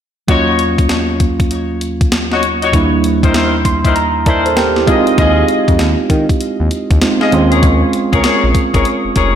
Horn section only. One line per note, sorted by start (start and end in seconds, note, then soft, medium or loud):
0.28 0.57 D#4 medium
0.28 0.57 F#4 medium
0.28 0.57 C#5 loud
2.31 2.43 D#4 medium
2.31 2.43 F#4 medium
2.31 2.43 C#5 medium
2.62 2.73 D#4 medium
2.62 2.74 F#4 medium
2.62 2.74 C#5 medium
3.23 3.33 D#3 medium
3.23 3.33 E4 medium
3.23 3.33 A#4 medium
3.23 3.34 C5 medium
3.34 3.54 D#3 medium
3.34 3.54 E4 medium
3.34 3.54 A#4 medium
3.34 3.54 C5 medium
3.84 3.96 D#3 medium
3.84 3.96 E4 medium
3.84 3.96 A#4 medium
3.84 3.96 C5 medium
4.26 4.46 D#3 medium
4.26 4.46 E4 medium
4.26 4.46 A#4 medium
4.26 4.46 C5 medium
4.87 5.07 F4 medium
4.87 5.07 G#4 medium
4.87 5.07 D#5 medium
5.18 5.47 F4 medium
5.18 5.47 G#4 medium
5.18 5.47 D#5 loud
7.21 7.32 F4 medium
7.21 7.33 G#4 medium
7.21 7.33 D#5 medium
7.52 7.63 G#4 medium
7.52 7.63 A#4 medium
7.52 7.63 C#5 medium
8.13 8.23 G#4 medium
8.13 8.23 A#4 medium
8.13 8.23 C#5 medium
8.24 8.44 G#4 medium
8.24 8.44 A#4 medium
8.24 8.44 C#5 medium
8.74 8.85 G#4 medium
8.74 8.86 A#4 medium
8.74 8.86 C#5 medium
9.16 9.35 G#4 medium
9.16 9.35 A#4 medium
9.16 9.35 C#5 medium